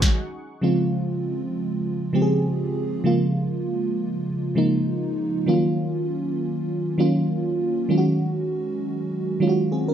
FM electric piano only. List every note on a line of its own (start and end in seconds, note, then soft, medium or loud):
0.61 1.70 C#3 medium
0.61 1.70 F3 medium
0.61 1.71 G#3 medium
0.61 1.71 C4 medium
0.61 1.71 F4 medium
2.13 2.94 C#3 medium
2.13 2.95 F3 medium
2.13 2.95 G#3 medium
2.13 2.95 C4 medium
2.13 2.22 G4 medium
2.22 2.99 G#4 medium
3.04 4.12 C#3 medium
3.04 4.13 F3 medium
3.04 4.13 G#3 medium
3.04 4.13 A#3 medium
3.04 4.14 F4 medium
4.55 5.37 C#3 medium
4.55 5.37 F3 medium
4.55 5.37 G#3 medium
4.55 5.38 A#3 medium
4.55 5.38 D#4 loud
5.46 6.55 D#3 medium
5.46 6.55 F#3 medium
5.46 6.55 A#3 medium
5.46 6.56 C#4 medium
5.46 6.56 F4 medium
6.98 7.79 D#3 medium
6.98 7.80 F#3 medium
6.98 7.80 A#3 medium
6.98 7.80 C#4 medium
6.98 7.81 F4 loud
7.89 8.97 D#3 medium
7.89 8.97 F#3 medium
7.89 8.98 G#3 medium
7.89 8.98 C#4 medium
7.89 7.98 F4 medium
7.98 9.02 F#4 medium
9.40 9.94 D#3 medium
9.40 9.94 F#3 medium
9.40 9.94 G#3 medium
9.40 9.72 C#4 medium
9.40 9.49 F4 medium
9.49 9.76 F#4 medium
9.72 9.88 C4 medium
9.72 9.88 G#4 medium
9.88 9.94 C#4 medium
9.88 9.94 A#4 medium